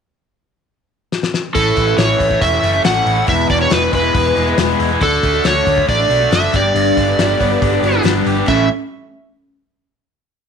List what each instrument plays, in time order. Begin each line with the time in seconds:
1.12 snare
1.23 snare
1.34 snare
1.54 picked electric bass A1, twelve-string acoustic guitar A2 E3 A3 C#4 E4, electric slide guitar A4, kick, open hi-hat
1.76 picked electric bass A1, twelve-string acoustic guitar E3 A3 C#4 E4, kick, open hi-hat
1.87 twelve-string acoustic guitar A3 C#4 E4
1.97 picked electric bass A1, twelve-string acoustic guitar A2 E3 A3 C#4 E4, electric slide guitar C#5, snare, open hi-hat
2.19 picked electric bass A1, twelve-string acoustic guitar E3 A3 C#4 E4, kick, open hi-hat
2.30 twelve-string acoustic guitar A3 C#4 E4, kick
2.41 picked electric bass E1, overdriven electric guitar C#4, electric slide guitar E5, kick, open hi-hat
2.52 twelve-string acoustic guitar A3 C#4 E4
2.62 picked electric bass F#1, twelve-string acoustic guitar E3 A3 C#4 E4, open hi-hat
2.73 twelve-string acoustic guitar A3 C#4 E4
2.84 picked electric bass A1, twelve-string acoustic guitar A2 E3 A3 C#4 E4, electric slide guitar F#5, snare, open hi-hat
3.06 picked electric bass A1, overdriven electric guitar E4, open hi-hat
3.16 twelve-string acoustic guitar A3 C#4 E4
3.27 picked electric bass E1, twelve-string acoustic guitar E2 B2 E3 G#3 B3 E4, electric slide guitar E5, kick, open hi-hat
3.49 picked electric bass E1, overdriven electric guitar B2, twelve-string acoustic guitar E3 G#3 B3 E4, electric slide guitar D5, kick, open hi-hat
3.59 twelve-string acoustic guitar E3 G#3 B3 E4, electric slide guitar C#5
3.70 picked electric bass E1, twelve-string acoustic guitar E2 B2 E3 G#3 B3 E4, electric slide guitar B4, snare, open hi-hat
3.91 picked electric bass E1, twelve-string acoustic guitar E3 G#3 B3 E4, electric slide guitar B4, kick, open hi-hat
4.03 twelve-string acoustic guitar E3 G#3 B3 E4
4.14 picked electric bass E1, overdriven electric guitar B3, kick, open hi-hat
4.26 twelve-string acoustic guitar E3 G#3 B3 E4
4.35 picked electric bass E1, twelve-string acoustic guitar E3 G#3 B3 E4, open hi-hat
4.47 twelve-string acoustic guitar E3 G#3 B3 E4
4.58 picked electric bass E1, twelve-string acoustic guitar E2 B2 E3 G#3 B3 E4, snare, open hi-hat
4.79 picked electric bass E1, overdriven electric guitar E4, open hi-hat
4.90 twelve-string acoustic guitar E3 G#3 B3 E4
5.00 picked electric bass D2, twelve-string acoustic guitar D3 A3 D4 F#4, electric slide guitar A4, kick, open hi-hat
5.22 picked electric bass D2, twelve-string acoustic guitar D3 A3 D4 F#4, kick, open hi-hat
5.33 twelve-string acoustic guitar A3 D4 F#4
5.44 picked electric bass D2, twelve-string acoustic guitar D3 A3 D4 F#4, electric slide guitar C#5, snare, open hi-hat
5.66 picked electric bass D2, twelve-string acoustic guitar D3 A3 D4 F#4, kick, open hi-hat
5.76 twelve-string acoustic guitar A3 D4 F#4, kick
5.88 picked electric bass A1, overdriven electric guitar D4, electric slide guitar D5, kick, open hi-hat
5.98 twelve-string acoustic guitar A3 D4 F#4
6.08 picked electric bass B1, twelve-string acoustic guitar D3 A3 D4 F#4, open hi-hat
6.20 twelve-string acoustic guitar A3 D4 F#4
6.31 picked electric bass F#1, twelve-string acoustic guitar D3 A3 D4 F#4, electric slide guitar E5, snare, open hi-hat
6.53 picked electric bass G1, twelve-string acoustic guitar G2 D3 G3 B3 D4 G4, electric slide guitar D5, kick, open hi-hat
6.74 picked electric bass G1, overdriven electric guitar G2, open hi-hat
6.96 picked electric bass G1, overdriven electric guitar D3, twelve-string acoustic guitar G3 B3 D4 G4, kick, open hi-hat
7.07 twelve-string acoustic guitar G3 B3 D4 G4
7.18 picked electric bass G1, twelve-string acoustic guitar G2 D3 G3 B3 D4 G4, clean electric guitar E5, snare, open hi-hat
7.40 picked electric bass G1, twelve-string acoustic guitar G3 B3 D4 G4, clean electric guitar C#5, kick, open hi-hat
7.51 twelve-string acoustic guitar G3 B3 D4 G4, clean electric guitar B4
7.62 picked electric bass G1, overdriven electric guitar D4, clean electric guitar A4, kick, open hi-hat
7.72 twelve-string acoustic guitar G3 B3 D4 G4, clean electric guitar G4
7.83 picked electric bass G1, twelve-string acoustic guitar G3 B3 D4 G4, clean electric guitar F#4, open hi-hat
7.92 twelve-string acoustic guitar G3 B3 D4 G4, clean electric guitar E4
8.03 picked electric bass G1, twelve-string acoustic guitar G2 D3 G3 B3 D4 G4, snare, open hi-hat
8.07 clean electric guitar D4
8.26 picked electric bass G1, overdriven electric guitar G4, open hi-hat
8.35 twelve-string acoustic guitar G3 B3 D4 G4
8.46 picked electric bass A1, twelve-string acoustic guitar A2 E3 A3 C#4 A4, clean electric guitar C#4, overdriven electric guitar E4, electric slide guitar E5, kick, crash